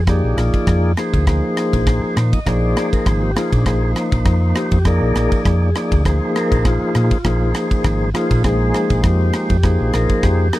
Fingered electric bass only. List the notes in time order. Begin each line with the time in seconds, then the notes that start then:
Already playing: F2
0.24 A#1
0.37 A#1
0.54 muted fingered electric bass stroke
0.67 F2
1.14 D2
1.73 A#1
2.17 A#2
2.46 A#1
3.06 G#1
3.35 muted fingered electric bass stroke
3.53 A#2
3.66 A#1
4.12 A#1
4.26 F2
4.72 F2
5.01 A#1
5.15 A#1
5.32 muted fingered electric bass stroke
5.45 F2
5.92 D2
6.52 A#1
6.95 A#2
7.25 A#1
7.84 G#1
8.31 A#2
8.45 A#1
8.90 A#1
9.04 F2
9.50 F2
9.81 A#1
9.94 A#1
10.23 F2